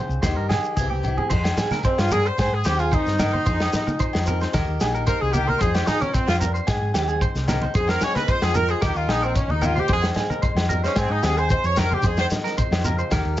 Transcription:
Already playing: F2 C#3 C4 G#4 C5
0.09 C2, shekere
0.22 D#2 D#3 G4 C5, kick, snare, high conga, low agogo, shekere
0.36 G2 A#4
0.49 G4 G#4, snare, high conga, low agogo, shekere
0.64 shekere
0.76 C2 C3 E3 C4 G#4, kick, shekere
0.81 E4 G4
0.90 G4, high conga
1.03 low conga, low agogo, shekere
1.08 E4
1.17 G#4, low conga
1.30 F2 G#4 C5, kick, crash, low conga, shekere
1.44 snare, low agogo, shekere
1.57 G#4, snare, low conga, shekere
1.71 A#4, snare, high conga, shekere
1.83 F2 C4 C5, kick, shekere
1.98 G2 F4, snare, low agogo
2.11 G2 G#4 A#4, low conga, shekere
2.25 C5, shekere
2.38 G#2 G#4 C5, kick, snare, low agogo, shekere
2.52 G#2 G#4
2.64 D#2 C4 G4 C5, snare, low agogo, shekere
2.79 F4 G#4, shekere
2.91 D#3 D#4 C5, kick, shekere
3.06 G2, snare, shekere
3.19 D#4 A#4, snare, high conga, low conga, low agogo, shekere
3.33 C5, high conga
3.46 F2 G#4 C5, kick, low conga, shekere
3.60 snare, low agogo, shekere
3.73 G#3, snare, low conga, shekere
3.87 muted clean electric guitar stroke, high conga, shekere
3.99 F3 C5, kick, shekere
4.13 F2, snare, low agogo
4.26 C4 A#4, low conga, shekere
4.41 C5, snare, shekere
4.53 D#2 D#3 G4 A#4, kick, snare, low agogo, shekere
4.67 D#2
4.80 A#1 D#4 G#4, snare, low agogo, shekere
4.94 A#4, shekere
5.07 A#3 A#4 C5, kick, shekere
5.20 C2 G#4
5.33 D#4 G4 A#4, high conga, low conga, low agogo, shekere
5.47 A#4 C5, high conga
5.59 F2 C4 G#4 C5, kick, low conga, shekere
5.74 G4, snare, low agogo, shekere
5.87 D#4 G#4, snare, low conga, shekere
6.01 C#4 A#4, high conga, shekere
6.14 F2 C4 C5, kick, shekere
6.27 F2 F4, snare, low agogo
6.40 G2 A#4, low conga, shekere
6.54 C5, shekere
6.67 G#2 G#4, kick, snare, low agogo, shekere
6.81 G#2
6.94 D#2 C4 G4, snare, low agogo, shekere
7.08 G#4, shekere
7.21 C5, kick, shekere
7.35 C2, snare, shekere
7.48 D#4 A#4, snare, high conga, low conga, low agogo, shekere
7.62 C5, high conga
7.74 F2 C4 G#4 C5, kick, low conga, shekere
7.88 A#4, snare, low agogo, shekere
8.01 G#3 G#4 C#5, snare, low conga, shekere
8.15 A#4 B4, snare, high conga, shekere
8.28 F3 C5, kick, shekere
8.42 F2 G#4, snare, low agogo, shekere
8.54 C4 A#4, high conga, low conga, shekere
8.68 G#4 C5, shekere
8.81 D#2 D#3 D#4 G4 A#4, kick, snare, low agogo, shekere
8.95 D#2 F4, shekere
9.08 A#1 D#4 G#4, snare, low agogo
9.22 C4 A#4, shekere
9.35 A#3 C#4, muted clean electric guitar stroke, kick, shekere
9.48 D#2 D#4, high conga
9.61 D#4 F4 A#4, high conga, low conga, low agogo, shekere
9.76 G4 C5, high conga, shekere
9.88 F2 C4 G#4 C5, kick, low conga, shekere
10.02 snare, low agogo, shekere
10.15 G#3 G#4, snare, low conga
10.30 A#4, high conga, shekere
10.42 F2 C5, kick, shekere
10.55 F2, snare, low agogo
10.69 G2 A#4, low conga, shekere
10.84 C#4 C5, snare, shekere
10.96 G#2 C4 G#4, kick, snare, low agogo, shekere
11.09 G#2 D#4
11.23 D#2 C4 G4 G#4, snare, low agogo, shekere
11.37 G#4 C5, shekere
11.50 G#2 C5, kick, shekere
11.64 F2 C#5, shekere
11.76 G2 A#4, snare, high conga, low conga, low agogo, shekere
11.91 G4 C5, high conga
12.02 F2 C4 G#4 C5, kick, low conga, shekere
12.17 C5, snare, low agogo, shekere
12.30 G#3, snare, low conga, shekere
12.44 A#4, snare, shekere
12.58 C5, muted steel-string acoustic guitar stroke, kick, shekere
12.71 F2, snare, low agogo
12.84 C#3 A#4, low conga, shekere
12.99 C5, shekere
13.11 D#2 D#3 G4 A#4, kick, snare, low agogo, shekere
13.25 D#2
13.37 shekere

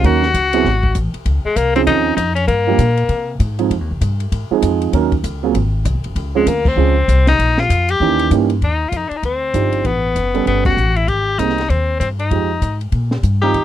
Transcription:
0.03 D#2 F#3 A#3 C#4 D#4 F#4 A#4, kick, ride
0.23 snare
0.34 C#2, kick, hi-hat pedal, ride
0.53 F#3 B3 C4 E4 G#4, ride
0.65 G#1, kick, snare
0.83 kick
0.95 A1, kick, hi-hat pedal, ride
1.14 muted upright bass stroke, ride
1.26 C#2, kick, ride
1.45 G#3, muted upright bass stroke
1.56 C2 A#3, kick, hi-hat pedal, ride
1.76 F3 C4 C#4 D#4 G#4, ride
1.86 D#2 D#4, kick, ride
2.17 F2 D#4, kick, hi-hat pedal, ride
2.35 C#4, ride
2.48 G2 A#3, kick, ride
2.67 F3 G3 A#3 D4 G4
2.78 A#2, kick, hi-hat pedal, ride
2.97 ride
3.09 C3, kick, ride
3.40 G#2, kick, hi-hat pedal, ride
3.59 F3 G#3 C4 D#4 G#4, ride
3.71 F2, kick, ride
3.81 D#2
3.91 C2
4.01 G2, kick, hi-hat pedal, ride
4.20 ride
4.32 G#2, kick, ride
4.51 F3 G#3 C4 D#4 G#4, muted upright bass stroke
4.62 F2, kick, hi-hat pedal, ride
4.82 ride
4.93 D#2 F#3 A#3 C#4 D#4 A#4, kick, ride
5.12 kick, ride
5.24 C#2, kick, hi-hat pedal, ride
5.43 F#3 A#3 C4 F4 G#4
5.54 G#1, kick, ride
5.85 C2, kick, hi-hat pedal, ride
5.95 G#1
6.04 F#1, ride
6.15 C#2, kick, ride
6.35 F3 G#3 C4 C#4 G#4
6.46 D2 A#3, kick, hi-hat pedal, ride
6.65 C4, kick, crash
6.76 C#2 F3 G#3 C4 C#4 G#4
7.08 C2, kick, hi-hat pedal, ride
7.27 D#4, snare, ride
7.39 A#1, kick, ride
7.58 F4, snare
7.69 F2, kick, hi-hat pedal, ride
7.89 G4, ride
8.00 D#2 E3 A#3 C#4 D#4 G4, kick
8.19 ride
8.31 G2 E3 A#3 C#4 D#4 G4, kick, hi-hat pedal, ride
8.50 ride
8.61 D#2 D#4, kick, ride
8.89 F2 F4, kick, hi-hat pedal, ride
8.97 D#4
9.09 D4, muted upright bass stroke, ride
9.17 D#4
9.23 D2 C4, kick, ride
9.54 G1 F3 D4 D#4 G4, kick, hi-hat pedal, ride
9.72 ride
9.84 A1 B3, kick, ride
10.15 F#1, kick, hi-hat pedal, ride
10.34 G3 B3 C#4 A4, ride
10.46 G1 B3, kick, ride
10.65 F#4, kick, ride
10.77 A1, hi-hat pedal
10.96 E4, ride
11.08 G#1 G4, kick, ride
11.39 C2 G3 A#3 C4 D#4 G#4, kick, hi-hat pedal, ride
11.49 snare
11.58 snare, ride
11.69 D#2 C4, kick, ride
12.00 G2 C4, kick, hi-hat pedal, ride
12.19 D#4, ride
12.31 F2 F3 G#3 D#4 G4, kick, ride
12.61 G#2, kick, hi-hat pedal, ride
12.81 ride
12.92 A#2, kick, ride
13.11 snare
13.23 G2, kick, hi-hat pedal, ride
13.42 D#3 G3 C4 D#4 F4 G4
13.54 D#2, kick, ride

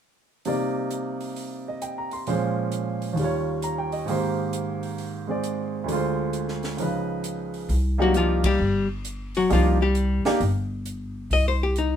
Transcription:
0.45 C3 G3 A#3 D#4 D5, open hi-hat
0.90 closed hi-hat
1.20 open hi-hat
1.36 open hi-hat
1.68 D#5
1.82 G5, closed hi-hat
1.98 A#5
2.11 C6, open hi-hat
2.27 A#2 F3 G#3 C#4 C5, open hi-hat
2.72 closed hi-hat
3.02 open hi-hat
3.13 D#2 D#3, open hi-hat
3.19 G3 F4
3.24 C#5
3.62 A#5, closed hi-hat
3.78 G5
3.92 D#5, open hi-hat
4.06 G#2 D#3 A#3 G4, open hi-hat
4.11 C5
4.53 closed hi-hat
4.83 open hi-hat
4.98 open hi-hat
5.27 G#3 C4 G#4 D5
5.43 closed hi-hat
5.84 D2 D3
5.88 G#3 F4, open hi-hat
5.95 C5
6.33 closed hi-hat
6.48 snare
6.63 snare, open hi-hat
6.77 C#2 C#3 F3 D#4, open hi-hat
6.82 B4
7.24 closed hi-hat
7.54 open hi-hat
7.69 C2, open hi-hat
7.98 F#3 A#3 D4 D#4 F#4 G4
8.14 F3 F4, closed hi-hat
8.44 G3 G4, kick, ride
8.59 G1
9.05 closed hi-hat
9.35 F#3 F#4, open hi-hat
9.49 C2 F3 A#3 D4 D#4 F4 G4, open hi-hat
9.82 G3 G4
9.95 closed hi-hat
10.25 A#3 D4 D#4 G4, muted upright bass stroke, snare, open hi-hat
10.40 G1, open hi-hat
10.86 closed hi-hat
11.30 C2 D#5, open hi-hat
11.48 C5
11.63 G4
11.76 D#4, closed hi-hat

